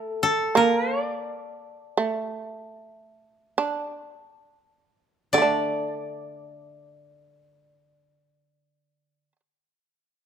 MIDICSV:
0, 0, Header, 1, 3, 480
1, 0, Start_track
1, 0, Tempo, 1324503
1, 199, Tempo, 1421801
1, 679, Tempo, 1608579
1, 1159, Tempo, 1729107
1, 1642, Time_signature, 4, 2, 24, 8
1, 2119, Tempo, 1685393
1, 3036, End_track
2, 0, Start_track
2, 0, Title_t, "Koto"
2, 0, Program_c, 0, 107
2, 0, Note_on_c, 0, 69, 92
2, 83, Note_off_c, 0, 69, 0
2, 83, Note_on_c, 0, 69, 81
2, 206, Note_on_c, 0, 70, 68
2, 358, Note_off_c, 0, 70, 0
2, 358, Note_on_c, 0, 74, 68
2, 727, Note_off_c, 0, 69, 0
2, 739, Note_off_c, 0, 74, 0
2, 1644, Note_on_c, 0, 74, 78
2, 2765, Note_off_c, 0, 74, 0
2, 3036, End_track
3, 0, Start_track
3, 0, Title_t, "Shamisen"
3, 0, Program_c, 1, 106
3, 0, Note_on_c, 1, 57, 76
3, 198, Note_off_c, 1, 57, 0
3, 200, Note_on_c, 1, 58, 79
3, 679, Note_off_c, 1, 58, 0
3, 680, Note_on_c, 1, 57, 71
3, 1159, Note_on_c, 1, 62, 66
3, 1160, Note_off_c, 1, 57, 0
3, 1642, Note_off_c, 1, 62, 0
3, 1648, Note_on_c, 1, 50, 61
3, 1658, Note_on_c, 1, 57, 49
3, 1670, Note_on_c, 1, 62, 51
3, 2769, Note_off_c, 1, 50, 0
3, 2780, Note_off_c, 1, 57, 0
3, 2791, Note_off_c, 1, 62, 0
3, 3036, End_track
0, 0, End_of_file